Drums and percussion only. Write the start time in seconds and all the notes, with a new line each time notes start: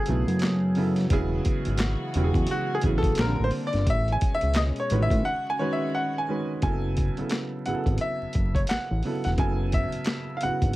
0.06 closed hi-hat
0.28 closed hi-hat
0.39 snare, clap, closed hi-hat
0.75 open hi-hat
0.96 snare, closed hi-hat
1.10 kick, closed hi-hat
1.45 kick, closed hi-hat
1.65 closed hi-hat
1.78 snare, clap, closed hi-hat
2.14 closed hi-hat
2.34 kick, closed hi-hat
2.47 closed hi-hat
2.82 kick, closed hi-hat
3.03 kick, closed hi-hat
3.15 snare, clap, closed hi-hat
3.51 open hi-hat
3.73 snare, closed hi-hat
3.87 kick, closed hi-hat
4.08 closed hi-hat
4.21 kick, closed hi-hat
4.41 closed hi-hat
4.54 snare, clap, closed hi-hat
4.76 closed hi-hat
4.90 closed hi-hat
5.10 kick, closed hi-hat
6.62 kick, closed hi-hat
6.97 kick, closed hi-hat
7.17 closed hi-hat
7.29 snare, clap, closed hi-hat
7.66 closed hi-hat
7.86 kick, closed hi-hat
7.98 closed hi-hat
8.33 kick, closed hi-hat
8.55 kick, closed hi-hat
8.67 snare, clap, closed hi-hat
9.03 open hi-hat
9.24 snare, closed hi-hat
9.38 kick, closed hi-hat
9.72 kick, closed hi-hat
9.92 closed hi-hat
10.04 snare, clap, closed hi-hat
10.41 closed hi-hat
10.62 kick, closed hi-hat